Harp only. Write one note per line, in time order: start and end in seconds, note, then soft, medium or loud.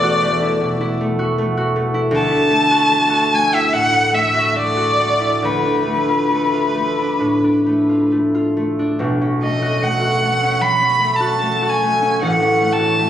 0.00 2.17 E1 medium
0.00 2.18 E2 medium
0.00 0.21 A3 medium
0.00 0.41 E4 medium
0.00 1.18 F#4 medium
0.22 1.00 A3 medium
0.42 0.79 E4 medium
0.60 2.17 B2 medium
0.81 1.93 E4 medium
1.01 1.37 A3 medium
1.19 1.56 F#4 medium
1.38 1.75 A3 medium
1.57 2.70 F#4 medium
1.76 2.49 A3 medium
1.94 2.29 E4 medium
2.11 5.41 D2 medium
2.30 3.53 E4 medium
2.50 2.89 A3 medium
2.71 3.09 F#4 medium
2.91 3.32 A3 medium
3.10 4.33 F#4 medium
3.33 4.11 A3 medium
3.54 3.92 E4 medium
3.73 5.47 A2 medium
3.93 5.19 E4 medium
4.12 4.55 A3 medium
4.34 4.76 F#4 medium
4.57 4.98 A3 medium
4.77 5.47 F#4 medium
4.99 5.85 A3 medium
5.20 5.47 E4 medium
5.42 9.03 D2 medium
5.65 6.97 D4 medium
5.87 6.29 A3 soft
6.09 6.52 F4 soft
6.31 6.74 A3 soft
6.53 7.88 F4 soft
6.75 7.65 A3 soft
6.99 7.43 D4 soft
7.20 9.03 A2 soft
7.44 8.78 D4 soft
7.66 8.11 A3 soft
7.89 8.33 F4 soft
8.12 8.56 A3 soft
8.35 9.04 F4 soft
8.57 9.41 A3 soft
8.79 9.04 D4 soft
8.99 12.23 B1 medium
8.99 12.24 B2 medium
9.21 10.42 C#4 soft
9.43 9.81 A3 soft
9.62 10.00 F#4 soft
9.82 10.21 A3 soft
10.01 11.19 F#4 soft
10.23 10.99 A3 soft
10.43 10.81 C#4 soft
10.61 13.10 F#3 soft
10.82 12.01 C#4 soft
11.00 11.40 A3 soft
11.20 11.61 F#4 soft
11.41 11.82 A3 soft
11.62 12.78 F#4 medium
11.83 12.59 A3 soft
12.02 12.40 C#4 soft
12.22 13.10 A1 medium
12.22 13.10 A2 medium
12.41 13.10 C#4 soft
12.61 12.98 A3 soft
12.79 13.10 F#4 soft
12.99 13.10 A3 medium